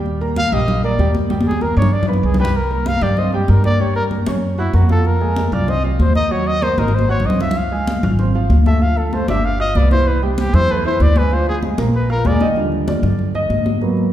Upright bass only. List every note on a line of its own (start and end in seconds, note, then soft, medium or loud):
0.00 0.47 D#2 medium
0.52 0.96 A#1 loud
0.98 1.71 D#2 medium
1.77 2.20 G2 loud
2.23 2.96 C2 loud
3.02 3.45 G2 loud
3.49 4.22 G2 loud
4.27 4.71 F#2 loud
4.74 5.47 F2 loud
5.52 5.96 C2 loud
5.99 6.72 D#2 medium
6.78 7.21 G#1 loud
7.25 7.97 C#2 medium
8.03 8.47 G#1 loud
8.50 9.22 D2 medium
9.28 9.72 G1 loud
9.75 10.48 C2 medium
10.53 10.97 E2 loud
11.00 11.73 D2 loud
11.78 12.22 A#1 loud
12.25 12.98 D#2 medium
13.03 13.47 G2 loud
13.50 14.13 G#2 medium